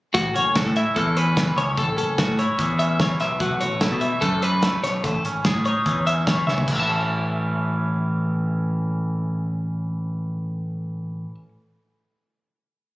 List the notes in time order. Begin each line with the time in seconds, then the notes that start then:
0.14 A1 A2 F#4, kick, closed hi-hat
0.24 A1
0.34 F#1 C#4 C#5, closed hi-hat
0.56 F#4 A4, kick, snare, closed hi-hat
0.66 A2
0.76 E4 E5, closed hi-hat
0.96 E2 E3 A4, kick, closed hi-hat
1.16 C#4 B4, closed hi-hat
1.36 E3, kick, snare, closed hi-hat
1.56 C#2 C#4 C#5, closed hi-hat
1.76 A1 A2 A4, kick, closed hi-hat
1.88 A1
1.97 F#1 C#4 A4, closed hi-hat
2.18 F#4, kick, snare, closed hi-hat
2.28 A2
2.39 E4 C#5, closed hi-hat
2.58 E2 E3, kick, closed hi-hat
2.79 C#4 E5, closed hi-hat
3.00 E3 C#5, kick, snare, closed hi-hat
3.20 B1 B2 E5, snare, closed hi-hat
3.40 B1 A3 F#4, kick, closed hi-hat
3.52 B1
3.61 A1 F#4 C#5, closed hi-hat
3.81 E4 A4, kick, snare, closed hi-hat
3.92 B2
4.01 E3 E5, closed hi-hat
4.21 F#2 A3 A4, kick, closed hi-hat
4.42 E3 B4, closed hi-hat
4.62 A3, kick, snare, closed hi-hat
4.83 B1 B2 C#5, snare, closed hi-hat
5.04 A1 A4, kick, closed hi-hat
5.14 A1
5.24 G#1 C#4, closed hi-hat
5.45 G#4, kick, snare, closed hi-hat
5.55 A2
5.65 D#4 C#5, closed hi-hat
5.86 E2 E3, kick, closed hi-hat
6.07 C#4 E5, closed hi-hat
6.27 E3 C#5, kick, snare, closed hi-hat
6.47 C#2 C#4 E5, snare
6.58 floor tom
6.68 A1 A2, kick, crash
6.72 C#5 E5
6.79 E3 A5
6.89 C#4